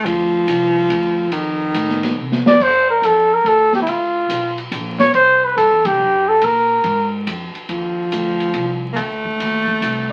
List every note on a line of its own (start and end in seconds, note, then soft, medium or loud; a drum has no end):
0.05 0.46 D2 medium
0.05 1.32 F3 loud
0.05 kick soft
0.05 ride medium
0.47 0.88 C2 medium
0.47 kick soft
0.47 hi-hat pedal medium
0.47 ride medium
0.89 1.31 D2 medium
0.89 kick soft
0.89 ride medium
1.32 1.73 F2 medium
1.32 2.41 D#3 medium
1.32 kick soft
1.32 ride medium
1.74 2.16 A2 medium
1.74 kick soft
1.74 hi-hat pedal medium
1.74 ride medium
1.89 snare soft
2.03 snare soft
2.03 ride soft
2.18 2.44 C3 medium
2.32 snare soft
2.46 2.64 D5 medium
2.46 muted upright bass stroke soft
2.46 snare medium
2.59 3.01 G2 medium
2.59 2.89 C5 medium
2.59 kick medium
2.59 crash medium
2.90 3.07 A#4 medium
3.02 3.43 F2 medium
3.02 3.35 A4 medium
3.02 kick soft
3.02 hi-hat pedal soft
3.02 ride medium
3.34 3.49 A#4 medium
3.44 3.85 D2 medium
3.44 3.74 A4 medium
3.44 kick soft
3.44 ride soft
3.73 3.81 G4 medium
3.73 snare soft
3.82 3.90 E4 medium
3.86 4.28 C#2 medium
3.86 4.59 F4 medium
3.86 kick soft
3.86 ride medium
4.29 4.71 B1 medium
4.29 kick soft
4.29 hi-hat pedal medium
4.29 ride medium
4.58 ride soft
4.71 5.13 A#1 medium
4.71 kick soft
4.71 hi-hat pedal soft
4.71 ride medium
4.99 5.13 C#5 medium
4.99 snare medium
4.99 ride soft
5.14 5.55 C2 medium
5.14 5.46 C5 medium
5.14 kick soft
5.14 ride soft
5.45 5.56 B4 medium
5.56 5.70 G2 medium
5.56 5.87 A4 medium
5.56 kick soft
5.56 hi-hat pedal soft
5.56 ride medium
5.70 5.85 E2 medium
5.85 5.99 C2 medium
5.85 6.30 G4 medium
5.85 kick medium
5.85 ride medium
5.99 6.41 F#2 medium
6.28 6.46 A4 medium
6.42 6.83 A#2 medium
6.42 7.14 A#4 medium
6.42 kick soft
6.42 ride medium
6.84 7.26 G#2 medium
6.84 kick soft
6.84 ride soft
7.27 7.53 F2 medium
7.27 kick soft
7.27 hi-hat pedal soft
7.27 ride medium
7.55 muted upright bass stroke soft
7.55 ride soft
7.69 8.11 D#2 medium
7.69 8.89 F3 medium
7.69 kick soft
7.69 ride soft
8.12 8.54 D2 medium
8.12 kick soft
8.12 hi-hat pedal medium
8.12 ride medium
8.40 ride soft
8.54 8.96 C2 medium
8.54 kick soft
8.54 ride soft
8.93 9.38 D2 medium
8.93 10.12 A3 loud
8.93 8.97 A#3 medium
8.93 kick soft
8.93 ride medium
9.25 kick soft
9.39 9.81 D#2 medium
9.39 kick soft
9.39 ride medium
9.68 kick soft
9.81 10.12 C2 medium
9.81 kick soft
9.81 hi-hat pedal medium
9.81 ride medium